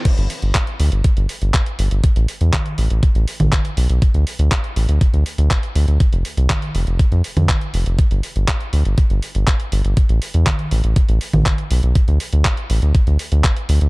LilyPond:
<<
  \new Staff \with { instrumentName = "Analog synth bass" } { \clef bass \time 4/4 \key g \mixolydian \tempo 4 = 121 r16 g,,16 r16 g,,16 r8 d,16 g,,16 r16 g,,16 r16 g,,16 r8 g,,16 g,,16 | r16 a,,16 r16 e,16 r8 a,,16 a,,16 r16 a,,16 r16 a,,16 r8 b,,16 b,,16 | r16 d,16 r16 d,16 r8 a,,16 d,16 r16 d,16 r16 d,16 r8 d,16 d,16 | r16 f,,16 r16 c,16 r8 f,,16 f,,16 r16 f,16 r16 f,16 r8 f,,16 f,,16 |
r16 g,,16 r16 g,,16 r8 d,16 g,,16 r16 g,,16 r16 g,,16 r8 g,,16 g,,16 | r16 a,,16 r16 e,16 r8 a,,16 a,,16 r16 a,,16 r16 a,,16 r8 b,,16 b,,16 | r16 d,16 r16 d,16 r8 a,,16 d,16 r16 d,16 r16 d,16 r8 d,16 d,16 | }
  \new DrumStaff \with { instrumentName = "Drums" } \drummode { \time 4/4 <cymc hh bd>16 hh16 hho16 hh16 <hc hh bd>16 hh16 hho16 hh16 <hh bd>16 hh16 hho16 hh16 <hc hh bd>16 hh16 hho16 hh16 | <hh bd>16 hh16 hho16 hh16 <hc cgho hh bd>16 hh16 hho16 hh16 <hh bd>16 hh16 hho16 <cgho hh>16 <hc hh bd>16 hh16 hho16 hh16 | <hh bd>16 hh16 hho16 hh16 <hc hh bd>16 hh16 hho16 hh16 <hh bd>16 hh16 hho16 hh16 <hc hh bd>16 hh16 hho16 hh16 | <hh bd>16 hh16 hho16 hh16 <hc cgho hh bd>16 hh16 hho16 hh16 <hh bd>16 hh16 hho16 <cgho hh>16 <hc hh bd>16 hh16 hho16 hh16 |
<hh bd>16 hh16 hho16 hh16 <hc hh bd>16 hh16 hho16 hh16 <hh bd>16 hh16 hho16 hh16 <hc hh bd>16 hh16 hho16 hh16 | <hh bd>16 hh16 hho16 hh16 <hc cgho hh bd>16 hh16 hho16 hh16 <hh bd>16 hh16 hho16 <cgho hh>16 <hc hh bd>16 hh16 hho16 hh16 | <hh bd>16 hh16 hho16 hh16 <hc hh bd>16 hh16 hho16 hh16 <hh bd>16 hh16 hho16 hh16 <hc hh bd>16 hh16 hho16 hh16 | }
>>